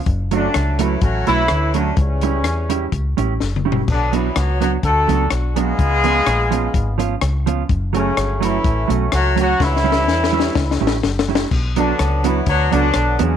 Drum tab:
CC |------------------------|------------------------|x-----------------------|------------------------|
HH |x--x--x--x--x--x--x--x--|x--x--x--x--x--x--------|---x--x--x--x--x--x--x--|x--x--x--x--x--x--x--x--|
SD |------r-----------r-----|------r-----------o-----|------r-----------r-----|------r-----------r-----|
T2 |------------------------|--------------------o---|------------------------|------------------------|
FT |------------------------|----------------------o-|------------------------|------------------------|
BD |o-----------o-----------|o-----------o-----------|o-----------o-----------|o-----------o-----------|

CC |------------------------|------------------------|x-----------------------|
HH |x--x--x--x--x--x--x--x--|------------------------|---x--x--x--x--x--x--x--|
SD |------r-----------r-----|o-o-o-o-o-o-o-o-o-o-o-o-|------r-----------r-----|
T2 |------------------------|------------------------|------------------------|
FT |------------------------|------------------------|------------------------|
BD |o-----------o-----------|o-----------o-----------|o-----------o-----------|